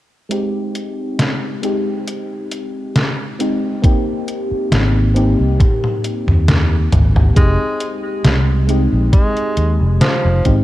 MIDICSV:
0, 0, Header, 1, 6, 480
1, 0, Start_track
1, 0, Key_signature, -4, "major"
1, 0, Tempo, 882353
1, 169, Time_signature, 4, 2, 24, 8
1, 5788, End_track
2, 0, Start_track
2, 0, Title_t, "FM electric piano"
2, 0, Program_c, 0, 5
2, 158, Note_on_c, 0, 56, 70
2, 164, Note_on_c, 0, 60, 63
2, 168, Note_on_c, 0, 63, 65
2, 175, Note_on_c, 0, 67, 76
2, 261, Control_c, 0, 64, 127
2, 857, Note_off_c, 0, 56, 0
2, 860, Note_off_c, 0, 60, 0
2, 862, Note_off_c, 0, 63, 0
2, 865, Note_off_c, 0, 67, 0
2, 879, Note_on_c, 0, 56, 64
2, 884, Note_on_c, 0, 60, 60
2, 890, Note_on_c, 0, 63, 59
2, 896, Note_on_c, 0, 67, 74
2, 1817, Note_off_c, 0, 56, 0
2, 1820, Note_off_c, 0, 60, 0
2, 1822, Note_off_c, 0, 63, 0
2, 1825, Note_off_c, 0, 67, 0
2, 1844, Note_on_c, 0, 56, 70
2, 1846, Note_on_c, 0, 60, 65
2, 1849, Note_on_c, 0, 63, 66
2, 1853, Note_on_c, 0, 67, 79
2, 2060, Note_off_c, 0, 56, 0
2, 2060, Note_off_c, 0, 60, 0
2, 2062, Note_off_c, 0, 63, 0
2, 2064, Note_off_c, 0, 67, 0
2, 2079, Note_on_c, 0, 58, 88
2, 2084, Note_on_c, 0, 60, 80
2, 2090, Note_on_c, 0, 63, 81
2, 2095, Control_c, 0, 64, 0
2, 2095, Note_on_c, 0, 67, 97
2, 2190, Control_c, 0, 64, 127
2, 2777, Note_off_c, 0, 58, 0
2, 2780, Note_off_c, 0, 60, 0
2, 2783, Note_off_c, 0, 63, 0
2, 2785, Note_off_c, 0, 67, 0
2, 2798, Note_on_c, 0, 58, 87
2, 2804, Note_on_c, 0, 60, 79
2, 2809, Note_on_c, 0, 63, 82
2, 2814, Note_on_c, 0, 67, 96
2, 3977, Note_off_c, 0, 58, 0
2, 3979, Note_off_c, 0, 60, 0
2, 3982, Note_off_c, 0, 63, 0
2, 3985, Note_off_c, 0, 67, 0
2, 3998, Note_on_c, 0, 56, 72
2, 4004, Note_on_c, 0, 60, 65
2, 4009, Note_on_c, 0, 63, 68
2, 4014, Note_on_c, 0, 67, 82
2, 4015, Control_c, 0, 64, 0
2, 4104, Control_c, 0, 64, 127
2, 4696, Note_off_c, 0, 56, 0
2, 4700, Note_off_c, 0, 60, 0
2, 4702, Note_off_c, 0, 63, 0
2, 4705, Note_off_c, 0, 67, 0
2, 4717, Note_on_c, 0, 56, 69
2, 4722, Note_on_c, 0, 60, 63
2, 4728, Note_on_c, 0, 63, 63
2, 4733, Note_on_c, 0, 67, 77
2, 5656, Note_off_c, 0, 56, 0
2, 5659, Note_off_c, 0, 60, 0
2, 5661, Note_off_c, 0, 63, 0
2, 5664, Note_off_c, 0, 67, 0
2, 5680, Note_on_c, 0, 56, 75
2, 5684, Note_on_c, 0, 60, 68
2, 5685, Note_on_c, 0, 63, 65
2, 5689, Note_on_c, 0, 67, 80
2, 5788, Note_off_c, 0, 56, 0
2, 5788, Note_off_c, 0, 60, 0
2, 5788, Note_off_c, 0, 63, 0
2, 5788, Note_off_c, 0, 67, 0
2, 5788, End_track
3, 0, Start_track
3, 0, Title_t, "Tenor saxophone"
3, 0, Program_c, 1, 66
3, 4007, Note_on_c, 1, 56, 84
3, 4299, Note_off_c, 1, 56, 0
3, 4967, Note_on_c, 1, 56, 86
3, 5336, Note_off_c, 1, 56, 0
3, 5448, Note_on_c, 1, 53, 88
3, 5740, Note_off_c, 1, 53, 0
3, 5788, End_track
4, 0, Start_track
4, 0, Title_t, "Fingered electric bass"
4, 0, Program_c, 2, 33
4, 2566, Note_on_c, 2, 32, 82
4, 2903, Note_off_c, 2, 32, 0
4, 2935, Note_on_c, 2, 36, 81
4, 3030, Note_off_c, 2, 36, 0
4, 3414, Note_on_c, 2, 39, 84
4, 3739, Note_off_c, 2, 39, 0
4, 3767, Note_on_c, 2, 32, 97
4, 3972, Note_off_c, 2, 32, 0
4, 4006, Note_on_c, 2, 29, 90
4, 4116, Note_off_c, 2, 29, 0
4, 4487, Note_on_c, 2, 36, 82
4, 4824, Note_off_c, 2, 36, 0
4, 4856, Note_on_c, 2, 34, 82
4, 4950, Note_off_c, 2, 34, 0
4, 5207, Note_on_c, 2, 39, 74
4, 5316, Note_off_c, 2, 39, 0
4, 5335, Note_on_c, 2, 29, 81
4, 5430, Note_off_c, 2, 29, 0
4, 5576, Note_on_c, 2, 29, 85
4, 5670, Note_off_c, 2, 29, 0
4, 5687, Note_on_c, 2, 32, 97
4, 5788, Note_off_c, 2, 32, 0
4, 5788, End_track
5, 0, Start_track
5, 0, Title_t, "Muted fingered electric bass strokes"
5, 2456, Note_on_c, 9, 29, 40
5, 2511, Note_off_c, 9, 29, 0
5, 5788, End_track
6, 0, Start_track
6, 0, Title_t, "Drums"
6, 168, Note_on_c, 9, 42, 74
6, 223, Note_off_c, 9, 42, 0
6, 409, Note_on_c, 9, 42, 60
6, 463, Note_off_c, 9, 42, 0
6, 648, Note_on_c, 9, 38, 107
6, 648, Note_on_c, 9, 42, 75
6, 702, Note_off_c, 9, 38, 0
6, 702, Note_off_c, 9, 42, 0
6, 888, Note_on_c, 9, 42, 59
6, 942, Note_off_c, 9, 42, 0
6, 1129, Note_on_c, 9, 42, 75
6, 1183, Note_off_c, 9, 42, 0
6, 1368, Note_on_c, 9, 42, 60
6, 1422, Note_off_c, 9, 42, 0
6, 1608, Note_on_c, 9, 38, 106
6, 1608, Note_on_c, 9, 42, 74
6, 1663, Note_off_c, 9, 38, 0
6, 1663, Note_off_c, 9, 42, 0
6, 1850, Note_on_c, 9, 42, 63
6, 1904, Note_off_c, 9, 42, 0
6, 2087, Note_on_c, 9, 36, 111
6, 2090, Note_on_c, 9, 42, 77
6, 2142, Note_off_c, 9, 36, 0
6, 2144, Note_off_c, 9, 42, 0
6, 2329, Note_on_c, 9, 42, 61
6, 2383, Note_off_c, 9, 42, 0
6, 2568, Note_on_c, 9, 38, 113
6, 2568, Note_on_c, 9, 42, 77
6, 2622, Note_off_c, 9, 38, 0
6, 2622, Note_off_c, 9, 42, 0
6, 2808, Note_on_c, 9, 42, 63
6, 2862, Note_off_c, 9, 42, 0
6, 3047, Note_on_c, 9, 36, 112
6, 3049, Note_on_c, 9, 42, 78
6, 3049, Note_on_c, 9, 48, 58
6, 3101, Note_off_c, 9, 36, 0
6, 3103, Note_off_c, 9, 42, 0
6, 3103, Note_off_c, 9, 48, 0
6, 3176, Note_on_c, 9, 48, 53
6, 3231, Note_off_c, 9, 48, 0
6, 3288, Note_on_c, 9, 42, 62
6, 3343, Note_off_c, 9, 42, 0
6, 3416, Note_on_c, 9, 47, 63
6, 3471, Note_off_c, 9, 47, 0
6, 3527, Note_on_c, 9, 38, 115
6, 3527, Note_on_c, 9, 42, 78
6, 3527, Note_on_c, 9, 47, 79
6, 3581, Note_off_c, 9, 38, 0
6, 3581, Note_off_c, 9, 42, 0
6, 3581, Note_off_c, 9, 47, 0
6, 3767, Note_on_c, 9, 42, 65
6, 3767, Note_on_c, 9, 45, 90
6, 3821, Note_off_c, 9, 42, 0
6, 3821, Note_off_c, 9, 45, 0
6, 3895, Note_on_c, 9, 45, 81
6, 3950, Note_off_c, 9, 45, 0
6, 4006, Note_on_c, 9, 36, 110
6, 4007, Note_on_c, 9, 42, 79
6, 4060, Note_off_c, 9, 36, 0
6, 4061, Note_off_c, 9, 42, 0
6, 4246, Note_on_c, 9, 42, 62
6, 4300, Note_off_c, 9, 42, 0
6, 4486, Note_on_c, 9, 38, 109
6, 4486, Note_on_c, 9, 42, 79
6, 4540, Note_off_c, 9, 38, 0
6, 4540, Note_off_c, 9, 42, 0
6, 4726, Note_on_c, 9, 42, 64
6, 4781, Note_off_c, 9, 42, 0
6, 4966, Note_on_c, 9, 36, 108
6, 4966, Note_on_c, 9, 42, 79
6, 5020, Note_off_c, 9, 36, 0
6, 5021, Note_off_c, 9, 42, 0
6, 5095, Note_on_c, 9, 42, 36
6, 5150, Note_off_c, 9, 42, 0
6, 5206, Note_on_c, 9, 42, 66
6, 5260, Note_off_c, 9, 42, 0
6, 5446, Note_on_c, 9, 38, 111
6, 5446, Note_on_c, 9, 42, 78
6, 5500, Note_off_c, 9, 38, 0
6, 5500, Note_off_c, 9, 42, 0
6, 5685, Note_on_c, 9, 42, 65
6, 5686, Note_on_c, 9, 36, 57
6, 5740, Note_off_c, 9, 42, 0
6, 5741, Note_off_c, 9, 36, 0
6, 5788, End_track
0, 0, End_of_file